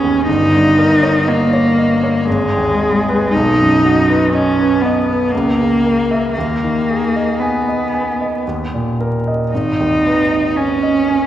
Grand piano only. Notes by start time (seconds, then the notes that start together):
Already playing: G#1 D#2 G#4 B4 D#5
0.03 D#2
0.28 G1
0.54 G2
0.78 A#4
1.03 C#5
1.28 D#5
1.53 C#5
1.78 D#5
2.03 C#5
2.29 G#1
2.56 D#2
2.82 G#4
3.09 B4
3.36 B1
3.60 F#2
3.85 F#4
4.09 B4
4.34 D#5
4.60 B4
4.85 D#5
5.10 B4
5.35 C#2
5.59 C#3
5.86 A#4
6.11 E5
6.38 D#2
6.64 D#3
6.91 G#4
7.16 D#5
7.42 G#5
7.68 D#5
7.94 G#5
8.21 D#5
8.47 D#2
8.74 A#2
9.00 A#4
9.28 D#5
9.54 G#1
9.80 D#2
10.07 B4
10.31 D#5
10.57 G#5
10.83 D#5
11.10 G#5